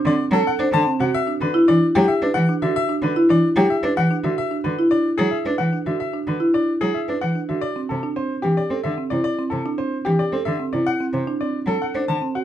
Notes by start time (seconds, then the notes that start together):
0.05 D3 C4 D5
0.31 F#3 A4
0.47 F#5
0.59 D4 C5
0.72 D3 A5
0.87 C4
1.00 C3 F#4 F#5
1.14 E5
1.27 D4
1.41 D3 B4
1.54 E4
1.68 E3 D4 D5
1.95 F#3 G4
2.08 E5
2.22 D4 B4
2.34 E3 F#5
2.49 D4
2.62 D3 F#4 E5
2.76 E5
2.89 D4
3.02 D3 B4
3.16 E4
3.29 E3 D4 D5
3.56 F#3 G4
3.70 E5
3.83 D4 B4
3.97 E3 F#5
4.11 D4
4.24 D3 F#4 E5
4.38 E5
4.51 D4
4.64 D3 B4
4.79 E4
4.91 D4 D5
5.18 F#3 G#4
5.31 E5
5.45 D4 B4
5.58 E3 F#5
5.73 D4
5.86 D3 F#4 E5
6.00 E5
6.13 D4
6.27 D3 B4
6.40 E4
6.54 D4 D5
6.81 F#3 G#4
6.94 E5
7.08 D4 B4
7.21 E3 F#5
7.35 D4
7.49 D3 F#4 E5
7.61 D5
7.76 C4
7.89 C3 A4
8.03 D4
8.16 C4 C5
8.42 E3 G4
8.57 D5
8.70 C4 A4
8.84 D3 E5
8.98 C4
9.10 C3 E4 D5
9.24 D5
9.39 C4
9.50 C3 A4
9.66 D4
9.78 C4 C5
10.05 E3 G4
10.19 D5
10.32 C4 A4
10.45 D3 E5
10.60 C4
10.73 C3 E4 D5
10.87 F#5
11.00 C4
11.13 C3 C5
11.27 D4
11.41 C4 D5
11.66 F#3 A4
11.82 F#5
11.94 D4 C5
12.08 D3 A5
12.22 C4
12.35 F#4 F#5